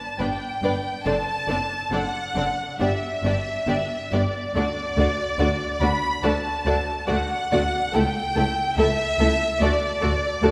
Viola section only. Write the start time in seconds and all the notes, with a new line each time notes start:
0.20 B3 D4
0.63 B3 D4
1.05 C4 D4
1.49 C4 D4
1.91 C4 D4
2.35 C4 D4
2.80 B3 D4
3.24 B3 D4
3.67 B3 D4
4.12 B3 D4
4.56 A3 D4
4.97 A3 D4
5.39 A3 D4
5.82 A3 D4
6.23 A3 D4
6.66 A3 D4
7.08 A3 D4
7.52 A3 D4
7.94 A3 E4
8.36 A3 E4
8.78 A3 E4
9.20 A3 E4
9.62 A3 F#4
10.02 A3 F#4
10.43 A3 F#4